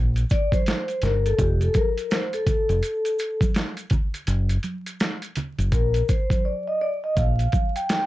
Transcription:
Already playing: A#1
0.16 closed hi-hat, maracas
0.30 D5, kick, closed hi-hat, maracas
0.52 C5, kick, closed hi-hat, high conga, maracas
0.66 snare, closed hi-hat, maracas
0.88 closed hi-hat, maracas
1.02 G1 A#4, snare, closed hi-hat, low conga, maracas
1.26 A4, closed hi-hat, maracas
1.38 F1 G4, kick, closed hi-hat, maracas
1.61 A4, closed hi-hat, maracas
1.74 A#4, kick, closed hi-hat, high conga, maracas
1.97 closed hi-hat, maracas
2.11 C5, snare, closed hi-hat, maracas
2.33 A4, closed hi-hat, maracas
2.47 kick, closed hi-hat, low conga, maracas
2.69 F1, closed hi-hat, maracas
2.83 closed hi-hat, maracas
3.05 closed hi-hat, maracas
3.19 closed hi-hat, maracas
3.41 kick, closed hi-hat, high conga, maracas
3.54 snare, closed hi-hat, maracas
3.77 closed hi-hat, maracas
3.90 kick, closed hi-hat, low conga, maracas
4.14 closed hi-hat, maracas
4.27 F#1, closed hi-hat, maracas
4.49 closed hi-hat, maracas
4.63 closed hi-hat, high conga, maracas
4.86 closed hi-hat, maracas
5.00 snare, closed hi-hat, maracas
5.22 closed hi-hat, maracas
5.35 closed hi-hat, low conga, maracas
5.58 F#1, closed hi-hat, maracas
5.72 A#1 A#4, kick, closed hi-hat, maracas
5.94 closed hi-hat, maracas
6.09 C5, kick, closed hi-hat, maracas
6.30 kick, closed hi-hat, high conga, maracas
6.45 D5
6.68 D#5
6.81 D5
7.04 D#5
7.17 A#1 F5, kick, closed hi-hat, maracas
7.39 closed hi-hat, maracas
7.52 kick, closed hi-hat, high conga, maracas
7.76 G5, closed hi-hat, maracas
7.89 snare, closed hi-hat, maracas

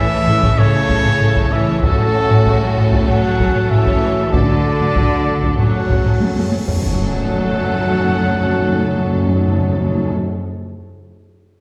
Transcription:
Already playing: C#3 E3 A3 C#4 E4 A4 C#5 E5
0.11 A1 E3
0.27 A1 C#3, taiko low-mid
0.42 A1 C#3, taiko
0.57 A1 C#3 E3 A4 C#5, taiko low-mid
0.74 A1 C#3
0.89 A1 C#3, taiko
1.05 A1 E3, taiko low-mid
1.21 A1 C#3, taiko low-mid
1.36 A1 C#3, taiko
1.51 A1 E3 C#5 E5
1.67 A1 C#3
1.82 A1 A2 C#3 A3 C#4 F#4 A4 C#5, taiko
1.98 A1 F#3, taiko low-mid
2.14 A1 C#3
2.29 A1 F#3, taiko low-mid
2.46 A1 C#3, taiko
2.61 A1 F#3
2.77 A1 C#3, taiko low-mid
2.92 A1 C#3, taiko
3.08 A1 F#3 C#5 F#5, taiko low-mid
3.23 A1 C#3
3.39 A1 C#3, taiko
3.55 A1 F#3, taiko low-mid
3.70 A1 C#3 E3 C#5 E5, taiko low-mid
3.86 A1 C#3, taiko
4.03 A1 F#3
4.18 A1 C#3
4.32 D2 D3 A3 D4 A4 D5, taiko, cymbal swell
4.49 D2 F#3, taiko low-mid
4.65 D2 D3
4.80 D2 F#3, taiko low-mid
4.96 D2 D3, taiko
5.12 D2 F#3
5.27 D2 D3, taiko low-mid
5.42 D2 D3, taiko
5.57 F#2 F#3 C#4 C#5 F#5, taiko low-mid
5.74 F#2 C#3
5.89 F#2 C#3, taiko
6.05 F#2 F#3, taiko low-mid
6.20 F#2 C#3, taiko high
6.36 F#2 C#3, taiko high
6.51 F#2 F#3, taiko high
6.67 F#2 C#3, taiko low
6.82 F#2 F#3 A3 C#4 F#4 A4 C#5 F#5, impact
6.89 F#2
6.95 F#2
7.02 F#2
7.08 F#2
7.14 F#2
7.20 F#2
7.27 F#2
7.33 F#2
7.39 F#2
7.46 F#2
7.52 F#2
7.59 F#2
7.65 F#2
7.72 F#2
7.78 F#2
7.85 F#2
7.91 F#2
7.97 F#2
8.03 F#2
8.09 F#2
8.16 F#2
8.22 F#2
8.28 F#2
8.35 F#2
8.41 F#2
8.47 F#2
8.53 F#2
8.60 F#2
8.66 F#2
8.72 F#2
8.79 F#2
8.85 F#2
8.92 F#2
8.98 F#2
9.04 F#2
9.10 F#2
9.16 F#2
9.23 F#2
9.29 F#2
9.36 F#2
9.42 F#2
9.48 F#2
9.54 F#2
9.60 F#2
9.67 F#2
9.73 F#2
9.80 F#2
9.86 F#2
9.92 F#2
9.98 F#2
10.05 F#2
10.11 F#2

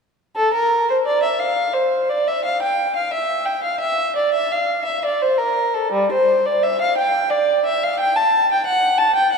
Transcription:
0.36 A4
0.54 A#4
0.90 C5
1.06 D5
1.23 E5
1.39 F5
1.73 C5
2.09 D5
2.28 E5
2.44 F5
2.62 G5
2.96 F5
3.13 E5
3.45 G5
3.64 F5
3.80 E5
4.16 D5
4.34 E5
4.52 F5
4.85 E5
5.05 D5
5.22 C5
5.38 A#4
5.74 A4
5.92 G3
6.12 C5
6.46 D5
6.63 E5
6.81 F5
6.97 G5
7.30 D5
7.65 E5
7.83 F5
7.99 G5
8.16 A5
8.52 G5
8.66 F#5
8.98 A5
9.16 G5
9.33 F#5

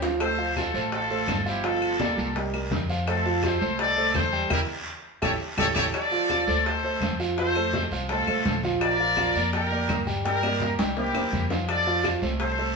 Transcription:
Already playing: D2
0.02 F3 F4 F5, low bongo, short guiro
0.20 A3 A4 C5, high bongo, high conga, long guiro, claves
0.38 F3 F4 F5, high bongo, high conga
0.56 F4 A4, high bongo, high conga, short guiro, claves
0.74 A1 A3 A4 C5, high conga, short guiro
0.92 F4 A4, high bongo, high conga, long guiro
1.10 A3 A4 C5, high bongo, high conga
1.28 G1, high bongo, low bongo, high conga, short guiro, claves
1.46 F3 E4 F4 G4 F5, high bongo, short guiro
1.64 F3 F4 A4 F5, high bongo, high conga, long guiro
1.82 high bongo, high conga, claves
2.00 A#3 G4 D5, high bongo, high conga, short guiro
2.18 C2, short guiro
2.35 G3 G4 A#4, high bongo, high conga, long guiro
2.53 G3 G4 A#4, high bongo, high conga, claves
2.71 F2, high bongo, low bongo, high conga, short guiro
2.89 F3 F4 F5, high bongo, short guiro
3.07 A3 F4 A4 C5, high bongo, high conga, long guiro, claves
3.25 F3 F4 F5, high bongo, high conga
3.43 A4 C5, high bongo, high conga, short guiro, claves
3.61 C2 A3 A4 C5, high conga, short guiro
3.79 A4 D5, high bongo, high conga, long guiro
3.97 A3 A4 C5, high bongo, high conga
4.14 E2 A4 C5, high bongo, low bongo, high conga, short guiro, claves
4.32 G3 G4 G5, high bongo, short guiro
4.50 E2 E4 G4 A#4, high bongo, high conga, long guiro, claves
5.22 A1 E4 G4 A4 C#5, high bongo, high conga, long guiro, claves
5.57 A1 E4 G4 A4 C#5, high bongo, high conga, long guiro, claves
5.75 A1 E4 G4 A4 C#5, high bongo, high conga, long guiro, claves
5.94 A4 D5, high bongo, high conga, long guiro, claves
6.11 F3 F4 F5, high bongo, high conga
6.30 F3 F4 F5, high bongo, high conga, short guiro, claves
6.47 D2 A3 A4 C5, high conga, short guiro
6.65 A4 C5, high bongo, high conga, long guiro
6.83 A3 A4 C5, high bongo, high conga
7.01 F2, high bongo, low bongo, high conga, short guiro, claves
7.19 F3 F4 F5, high bongo, short guiro
7.37 F3 F4 A4 C5 F5, high bongo, high conga, long guiro
7.55 A3 A4 C5, high bongo, high conga, claves
7.73 high bongo, high conga, short guiro
7.91 C2 F3 F4 F5, short guiro
8.09 A3 F4 A4 C5, high bongo, high conga, long guiro
8.27 C2 A3 A4 C5, high bongo, high conga, claves
8.45 A#1, high bongo, low bongo, high conga, short guiro
8.63 F3 F4 F5, high bongo, high conga, short guiro
8.81 A#4 D5, high bongo, high conga, long guiro, claves
8.99 F3 F4 F5, high bongo, high conga
9.17 F3 F4 F5, high bongo, high conga, short guiro, claves
9.35 F2 A#3 A#4 D5, high conga, short guiro
9.53 G4 A#4, high bongo, high conga, long guiro
9.71 A#3 A#4 D5, high bongo, high conga
9.89 G2, high bongo, low bongo, high conga, short guiro, claves
10.06 G3 G4 G5, high bongo, high conga, short guiro
10.24 G3 G4 A#4 G5, high bongo, high conga, long guiro
10.43 A#3 A#4 D5, high bongo, high conga, claves
10.60 high bongo, high conga, short guiro
10.78 C2 G3 G4 G5, low bongo, short guiro
10.96 A#3 E4 G4 A#4 C5, low bongo, high conga, long guiro
11.14 E2 A#3 A#4 C5, low bongo, high conga, claves
11.32 F2, high conga, short guiro
11.50 F3 F4 F5, low bongo, short guiro
11.68 A4 D5, high bongo, high conga, long guiro, claves
11.86 F3 F4 F5, high bongo, high conga
12.04 F3 F4 F5, high bongo, high conga, short guiro, claves
12.22 C2 A3 A4 C5, high conga, short guiro
12.40 A4 C5, high bongo, high conga, long guiro
12.58 A3 A4 C5, high bongo, high conga

